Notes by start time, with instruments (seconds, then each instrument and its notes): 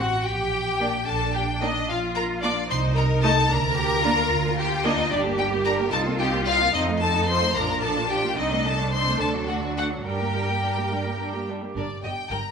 Already playing: double bass section A1, cello section F#4, violin section F#5
0.00 viola section C4 F#4, violin section F#4
0.25 double bass section A#1, cello section G4, violin section G4 G5
0.80 viola section A#3 D4
1.06 double bass section A#1, cello section D4, violin section A4 A5
1.34 violin section G4 G5
1.61 viola section A#3 D4, violin section D#4 D#5
1.88 double bass section A#1, violin section F4 F5, cello section F4
2.15 violin section A#4 A#5
2.41 viola section A#3 D4, violin section D5 D6
2.69 double bass section C2, cello section D#4, violin section C5 C6
2.96 violin section A#4 A#5
3.23 viola section A3 D#4, violin section A4 A5
3.49 double bass section D2, cello section D4, violin section A#4 A#5
3.76 cello section G4
4.03 viola section A#3 D4, cello section F4
4.30 double bass section D2
4.58 violin section G4 G5
4.84 viola section A#3 D4, violin section D#4 D#5
5.10 double bass section G1, viola section G3 D4, violin section D4 D5, cello section G4
5.24 viola section A#3 G4
5.38 viola section G3 D4, violin section G4 G5
5.52 viola section A#3 G4
5.64 viola section G3 D4, violin section A#4 A#5
5.79 viola section A#3 G4
5.91 double bass section C2, viola section C4 D#4, cello section F4, violin section A4 A5
6.06 viola section A#3 C4
6.19 viola section C4 D#4, violin section G4 G5
6.34 viola section A#3 C4
6.46 viola section C4 D#4, violin section F4 F5
6.61 viola section A#3 C4
6.74 double bass section F2, viola section F3 C4, violin section D#4 D#5, cello section D#4
6.88 viola section A3 D#4
7.01 viola section F3 C4, violin section A4 A5
7.16 viola section A3 D#4
7.29 viola section F3 C4, violin section C5 C6
7.42 viola section A3 D#4
7.55 double bass section A#1, viola section F3 D4, cello section D4, violin section A#4 A#5
7.70 viola section A#3 F4
7.82 viola section F3 D4, violin section A4 A5
7.97 viola section A#3 F4
8.09 viola section F3 D4, violin section G4 G5
8.24 viola section A#3 F4
8.37 double bass section C2, viola section C4 D#4, violin section D#4 D#5
8.52 viola section A3 C4
8.65 viola section C4 D#4, violin section A4 A5
8.80 viola section A3 C4
8.92 viola section C4 D#4, violin section C5 C6
9.09 viola section A3 C4
9.19 double bass section D2, viola section A3 D4, violin section A4 A5
9.35 viola section F#3 F#4
9.47 viola section A3 D4, violin section F#4 F#5
9.63 viola section F#3 F#4
9.76 viola section A3 D4, violin section F#4 F#5
9.91 viola section F#3 F#4
10.05 double bass section G2, viola section G3 D4, violin section G4 G5, cello section A#4
10.20 viola section A#3 G4
10.35 viola section G3 D4
10.50 viola section A#3 G4
10.63 viola section G3 D4
10.78 viola section A#3 G4
10.92 viola section G3 D4
11.07 viola section A#3 G4
11.20 viola section G3 D4
11.34 viola section A#3 G4
11.49 viola section G3 D4
11.62 viola section A#3 G4
11.76 double bass section G1, cello section G2, viola section D4, violin section A#4 D5
12.03 double bass section G1, cello section G2, viola section G4, violin section D#5 G5
12.30 double bass section G1, cello section G2, viola section A#4, violin section G5 A#5